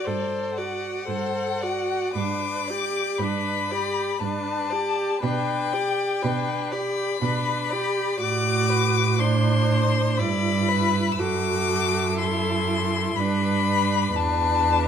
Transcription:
0.00 0.57 D5 soft
0.05 0.94 G2 soft
0.05 0.60 A4 soft
0.05 0.59 C5 soft
0.57 1.08 F#4 soft
0.57 1.07 D5 soft
0.57 2.13 F#5 medium
1.08 2.01 G2 soft
1.08 1.64 A4 soft
1.08 1.63 C5 soft
1.61 2.16 F#4 soft
1.61 2.15 D5 soft
2.15 3.05 G2 medium
2.15 2.71 D4 soft
2.15 2.69 B4 soft
2.15 3.20 D6 medium
2.68 3.23 G4 soft
2.68 3.20 D5 soft
3.18 4.07 G2 medium
3.18 3.74 D4 soft
3.18 3.72 B4 soft
3.18 4.22 B5 medium
3.71 4.22 G4 soft
3.71 4.21 D5 soft
4.20 5.08 G2 medium
4.20 4.74 D4 soft
4.20 4.72 B4 soft
4.20 5.24 A5 medium
4.71 5.23 G4 soft
4.71 5.20 D5 soft
5.21 6.09 B2 medium
5.21 5.75 D4 soft
5.21 5.74 B4 soft
5.21 6.72 G5 medium
5.73 6.24 G4 soft
5.73 6.24 D5 soft
6.22 7.08 B2 medium
6.22 6.74 D4 soft
6.22 6.73 B4 soft
6.72 7.22 G4 soft
6.72 7.20 D5 soft
6.72 8.19 B5 medium
7.21 8.07 B2 medium
7.21 7.75 D4 soft
7.21 7.72 B4 soft
7.70 8.21 G4 medium
7.70 8.19 D5 soft
8.20 10.21 A2 medium
8.20 9.20 F#4 soft
8.20 8.71 D5 medium
8.20 9.21 D6 medium
8.70 9.20 B4 medium
9.19 10.20 D4 medium
9.19 10.21 C5 medium
9.19 10.19 C6 medium
10.17 11.18 G2 medium
10.17 11.20 E4 soft
10.17 10.70 D5 medium
10.17 11.13 B5 medium
10.68 11.20 B4 medium
11.12 11.20 E6 medium
11.18 13.13 F#2 medium
11.18 12.18 F#4 medium
11.18 13.17 A4 soft
11.18 12.18 D6 medium
12.18 13.21 E4 soft
12.18 13.18 C6 medium
13.17 14.15 G2 medium
13.17 14.16 D4 soft
13.17 14.15 B4 medium
13.17 14.17 B5 medium
14.16 14.88 E2 medium
14.16 14.88 D4 soft
14.16 14.88 B4 soft
14.16 14.88 A5 medium

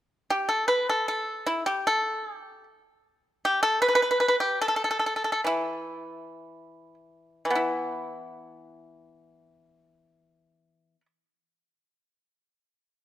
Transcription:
0.30 0.48 G4 medium
0.49 0.67 A4 medium
0.68 0.87 B4 medium
0.89 1.07 A4 medium
1.08 1.45 A4 medium
1.46 1.66 E4 medium
1.66 1.86 G4 medium
1.87 2.36 A4 medium
2.36 2.63 G4 medium
3.45 3.62 G4 medium
3.63 3.81 A4 medium
3.82 3.87 B4 medium
3.88 3.94 B4 medium
3.95 4.01 B4 medium
4.02 4.10 B4 medium
4.11 4.19 B4 medium
4.20 4.27 B4 medium
4.28 4.35 B4 medium
4.40 4.60 G4 medium
4.62 4.67 A4 medium
4.68 4.75 A4 medium
4.76 4.83 A4 medium
4.84 4.89 A4 soft
4.91 4.98 A4 soft
4.99 5.05 A4 soft
5.06 5.15 A4 soft
5.16 5.23 A4 soft
5.24 5.31 A4 soft
5.32 5.40 A4 soft
5.44 7.44 E3 soft
5.44 6.94 E4 medium
7.45 10.95 E3 soft
7.50 11.00 B3 soft
7.55 11.05 E4 soft

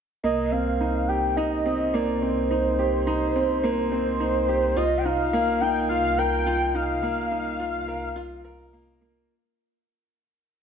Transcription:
0.23 4.74 C2 medium
0.23 0.51 A#3 medium
0.23 0.53 D#5 loud
0.51 0.79 C4 medium
0.51 1.10 F5 loud
0.81 1.08 D#4 medium
1.08 1.36 G4 medium
1.08 1.36 G5 loud
1.37 1.53 D#4 medium
1.37 1.95 D#5 loud
1.66 1.93 C4 medium
1.93 2.21 A#3 medium
1.93 2.23 D5 medium
2.21 2.49 C4 medium
2.21 3.92 C5 loud
2.51 2.78 D#4 medium
2.79 3.06 G4 medium
3.07 3.23 D#4 medium
3.36 3.63 C4 medium
3.64 3.91 A#3 medium
3.92 4.19 C4 medium
3.92 4.78 C5 medium
4.20 4.47 D#4 medium
4.48 4.75 G4 medium
4.77 9.27 C2 medium
4.77 4.93 F4 loud
4.77 4.99 D#5 loud
4.98 5.06 G5 medium
5.05 5.32 D#4 medium
5.05 5.62 F5 loud
5.33 5.60 A#3 medium
5.61 5.89 D#4 medium
5.61 5.89 G5 loud
5.89 6.17 F4 medium
5.89 6.20 F5 loud
6.18 6.45 A#4 medium
6.18 6.76 G5 loud
6.46 6.63 F4 loud
6.75 7.02 D#4 medium
6.75 9.01 F5 loud
7.03 7.30 A#3 medium
7.31 7.58 D#4 medium
7.60 7.87 F4 medium
7.88 8.15 A#4 medium
8.16 8.32 F4 loud
8.45 8.72 A#4 medium
8.73 9.00 A#3 medium
9.01 9.18 A#3 medium

